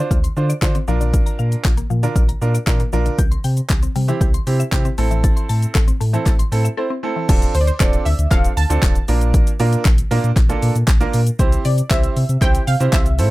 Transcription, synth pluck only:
7.55 7.61 C5 medium
7.61 7.67 D5 medium
7.67 7.81 C5 medium
7.80 8.06 D5 medium
8.05 8.32 E5 medium
8.31 8.58 F5 loud
8.57 9.05 A5 loud
11.65 11.91 D5 medium
11.91 12.43 E5 loud
12.42 12.68 G5 loud
12.67 12.94 F5 loud
12.93 13.29 E5 medium

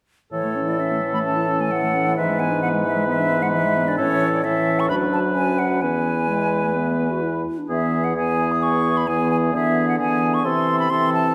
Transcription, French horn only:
0.33 3.95 E3 soft
3.99 4.41 E3 soft
4.45 4.89 E3 soft
4.90 5.84 F#3 soft
5.83 7.47 E3 soft
7.70 8.13 E3 soft
8.16 9.06 E3 soft
9.08 9.53 E3 soft
9.54 9.99 E3 soft
10.00 10.43 E3 soft
10.44 10.89 E3 soft
10.90 11.35 E3 soft

